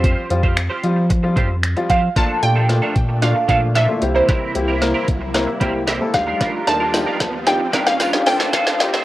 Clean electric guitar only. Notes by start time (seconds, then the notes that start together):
0.03 C4 F4 G4 C5
0.30 muted clean electric guitar stroke
0.43 C4 F4 G4 C5
0.57 muted clean electric guitar stroke
0.70 C4 F4 G4 C5
0.83 muted clean electric guitar stroke
0.96 muted clean electric guitar stroke
1.10 muted clean electric guitar stroke
1.23 muted clean electric guitar stroke
1.36 C4 F4 G4 C5
1.50 muted clean electric guitar stroke
1.63 muted clean electric guitar stroke
1.76 muted clean electric guitar stroke
1.89 C4 F4 G4 C5
2.03 muted clean electric guitar stroke
2.16 F3 A#3 D4 A4
2.56 F3 A#3 D4 A4
2.69 muted clean electric guitar stroke
2.82 F3 A#3 D4 A4
3.09 muted clean electric guitar stroke
3.22 muted clean electric guitar stroke
3.35 muted clean electric guitar stroke
3.49 F3 A#3 D4 A4
3.62 muted clean electric guitar stroke
3.75 F3 A#3 D4 A4
3.88 muted clean electric guitar stroke
4.02 muted clean electric guitar stroke
4.15 G3 C4 E4 A#4
4.28 G3 C4 E4 A#4
4.55 muted clean electric guitar stroke
4.68 G3 C4 E4 A#4
4.94 G3 C4 E4 A#4
5.08 muted clean electric guitar stroke
5.21 muted clean electric guitar stroke
5.34 muted clean electric guitar stroke
5.48 muted clean electric guitar stroke
5.61 G3 C4 E4 A#4
5.74 muted clean electric guitar stroke
5.87 G3 C4 E4 A#4
6.01 muted clean electric guitar stroke
6.14 muted clean electric guitar stroke
6.27 G3 D4 F4 A#4
6.40 G3 D4 F4 A#4
6.67 muted clean electric guitar stroke
6.80 G3 D4 F4 A#4
6.94 muted clean electric guitar stroke
7.07 G3 D4 F4 A#4
7.20 muted clean electric guitar stroke
7.33 muted clean electric guitar stroke
7.47 muted clean electric guitar stroke
7.60 muted clean electric guitar stroke
7.73 G3 D4 F4 A#4
7.86 muted clean electric guitar stroke
8.00 G3 D4 F4 A#4
8.13 muted clean electric guitar stroke
8.26 muted clean electric guitar stroke
8.39 A3 C4 F4 A4
8.53 A3 C4 F4 A4
8.80 muted clean electric guitar stroke
8.93 A3 C4 F4 A4